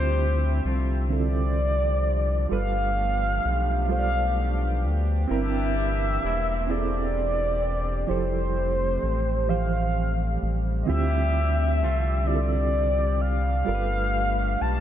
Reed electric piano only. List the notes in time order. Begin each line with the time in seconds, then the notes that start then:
Already playing: D3 C4 E4 F4 G4
1.09 D3 C4 E4 F4 A4
2.49 G3 F4 A4 B4
3.88 G3 F4 A4 C5
3.99 D5
5.28 C4 E4 A#4
6.67 C4 E4 G#4
6.78 A4
8.07 F3 E4 G4 A4
9.47 E3 F3 G4 C5
10.86 D3 C4 E4 F4 G4
12.25 D3 C4 E4 F4 G4
12.35 A4
13.65 G3 F4 A4 A#4
13.75 B4